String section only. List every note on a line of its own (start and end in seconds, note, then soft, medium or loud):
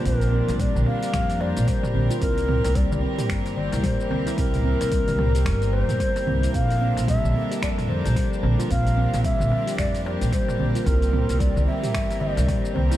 0.00 2.18 F3 medium
0.00 2.18 A#3 medium
0.00 2.18 D4 medium
0.00 10.83 A#4 medium
0.06 6.50 G4 medium
2.22 6.50 E3 medium
2.22 12.97 A#3 medium
2.22 6.50 C4 medium
6.54 10.82 F3 medium
6.54 10.82 D4 medium
6.54 8.68 A4 medium
8.71 12.97 G4 medium
10.86 12.97 E3 medium
10.86 12.97 C4 medium
10.86 12.97 A#4 medium